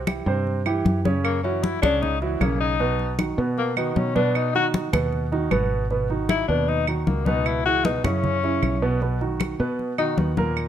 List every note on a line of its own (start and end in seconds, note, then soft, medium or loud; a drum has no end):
0.00 0.21 C2 medium
0.07 0.23 E3 medium
0.07 0.24 E4 medium
0.07 0.24 G4 medium
0.07 high conga medium
0.07 claves medium
0.26 0.81 G2 medium
0.26 0.59 C3 medium
0.26 0.59 C4 medium
0.26 0.59 C5 medium
0.47 high conga soft
0.66 0.98 E3 medium
0.66 0.98 E4 medium
0.66 0.98 G4 medium
0.66 high conga soft
0.66 claves medium
0.85 1.77 F#2 medium
0.85 high conga medium
1.05 1.37 C#3 medium
1.05 1.37 C#4 medium
1.05 1.37 C#5 medium
1.05 high conga medium
1.24 1.42 A#3 medium
1.24 high conga soft
1.24 claves medium
1.43 1.76 E3 medium
1.43 1.64 C#4 medium
1.43 1.76 E4 medium
1.43 1.76 F#4 medium
1.43 high conga soft
1.63 1.81 E4 medium
1.63 high conga medium
1.82 2.37 C#2 medium
1.82 2.15 C#3 medium
1.82 2.15 C#4 medium
1.82 2.03 D4 loud
1.82 2.15 C#5 medium
1.82 high conga medium
1.82 low conga medium
1.82 claves medium
2.02 2.20 D#4 medium
2.02 high conga soft
2.02 low conga medium
2.21 2.38 E3 medium
2.21 2.37 F#3 medium
2.21 2.38 E4 medium
2.21 2.38 F#4 medium
2.21 high conga soft
2.41 3.32 B1 medium
2.41 2.73 C#3 medium
2.41 2.60 A#3 medium
2.41 2.73 C#4 medium
2.41 2.74 C#5 medium
2.41 high conga medium
2.41 claves medium
2.60 3.15 D#4 medium
2.80 3.12 B2 medium
2.80 3.12 B3 medium
2.80 3.12 B4 medium
2.80 high conga soft
2.99 high conga soft
3.19 3.35 D#3 medium
3.19 3.35 D#4 medium
3.19 3.35 F#4 medium
3.19 high conga medium
3.19 claves medium
3.38 3.70 B2 medium
3.38 3.92 B2 medium
3.38 3.70 B3 medium
3.38 3.70 B4 medium
3.58 3.76 A#3 medium
3.58 high conga soft
3.76 4.09 D#3 medium
3.76 3.98 B3 medium
3.76 4.09 D#4 medium
3.76 4.09 F#4 medium
3.76 high conga soft
3.76 claves medium
3.96 4.88 B2 medium
3.96 4.15 C#4 medium
3.96 high conga medium
4.15 4.47 B2 medium
4.15 4.48 B3 loud
4.15 4.37 D4 loud
4.15 4.48 B4 loud
4.15 high conga medium
4.35 4.55 D#4 medium
4.35 high conga soft
4.35 claves medium
4.54 4.86 D#3 medium
4.54 4.87 D#4 medium
4.54 4.87 F#4 medium
4.54 4.67 F#4 loud
4.54 high conga soft
4.74 high conga medium
4.93 5.48 D#2 medium
4.93 5.25 B2 medium
4.93 5.25 B3 medium
4.93 5.25 B4 medium
4.93 high conga medium
4.93 low conga medium
4.93 claves medium
5.13 high conga soft
5.32 5.48 D#3 medium
5.32 5.48 D#4 medium
5.32 5.49 F#4 medium
5.32 high conga soft
5.51 6.43 G#1 loud
5.51 5.83 B2 medium
5.51 5.83 B3 medium
5.51 5.84 B4 medium
5.51 high conga medium
5.51 claves medium
5.90 6.07 B2 medium
5.90 6.07 B3 medium
5.90 6.07 B4 medium
5.90 high conga soft
6.10 6.42 D#3 medium
6.10 6.42 D#4 medium
6.10 6.42 F#4 medium
6.10 high conga soft
6.29 6.47 E4 medium
6.29 high conga medium
6.29 claves medium
6.48 7.03 D#2 medium
6.48 6.81 B2 medium
6.48 6.81 B3 medium
6.48 6.70 D4 medium
6.48 6.82 B4 medium
6.68 6.88 D#4 medium
6.68 high conga soft
6.87 7.20 D#3 medium
6.87 7.04 F#3 soft
6.87 7.20 D#4 medium
6.87 7.20 F#4 medium
6.87 high conga soft
6.87 claves medium
7.07 7.98 C#2 medium
7.07 7.28 A#3 medium
7.07 high conga medium
7.26 7.59 B2 medium
7.26 7.59 B3 medium
7.26 7.48 D#4 medium
7.26 7.59 B4 medium
7.26 high conga medium
7.46 7.65 E4 medium
7.46 high conga soft
7.46 claves medium
7.65 7.82 E3 medium
7.65 7.82 E4 medium
7.65 7.87 F#4 loud
7.65 7.82 G#4 medium
7.65 high conga soft
7.85 8.01 B2 medium
7.85 8.01 B3 medium
7.85 8.04 D#4 medium
7.85 8.01 B4 medium
7.85 high conga medium
8.04 8.58 F#2 medium
8.04 8.36 C#3 medium
8.04 8.36 C#4 medium
8.04 8.98 C#4 loud
8.04 8.36 E4 medium
8.04 high conga medium
8.04 low conga medium
8.04 claves medium
8.24 high conga soft
8.24 low conga medium
8.43 8.75 C#3 medium
8.43 8.75 C#4 medium
8.43 8.76 E4 medium
8.43 high conga soft
8.62 9.54 B1 loud
8.62 high conga medium
8.62 claves medium
8.82 8.98 B2 loud
8.82 8.98 B3 medium
8.82 8.98 B4 medium
9.01 9.17 B2 medium
9.01 9.18 B3 medium
9.01 9.18 B4 medium
9.01 high conga soft
9.21 9.53 D#3 medium
9.21 9.53 D#4 medium
9.21 9.53 F#4 medium
9.21 high conga soft
9.40 high conga medium
9.40 claves medium
9.60 10.14 B2 medium
9.60 9.92 B2 medium
9.60 9.92 B3 medium
9.60 9.92 B4 medium
9.79 high conga soft
9.98 10.30 D#3 medium
9.98 10.30 D#4 medium
9.98 10.20 D#4 medium
9.98 10.30 F#4 medium
9.98 high conga soft
9.98 claves medium
10.18 10.68 D#2 medium
10.18 10.57 B3 medium
10.18 high conga medium
10.37 10.68 A#2 medium
10.37 10.68 A#3 medium
10.37 10.68 A#4 loud
10.37 high conga medium
10.57 high conga soft
10.57 claves medium